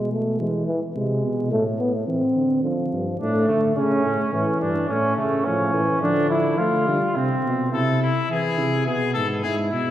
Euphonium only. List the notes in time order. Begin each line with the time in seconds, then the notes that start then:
Already playing: G#3
0.12 A3
0.40 G#3
0.67 E3
0.96 G#3
1.51 A3
1.79 B3
2.07 C4
2.63 F3
3.20 A3
3.76 A3
4.33 E3
4.89 A3
5.46 F3
5.74 E3
6.02 D3
6.58 A3
6.87 G3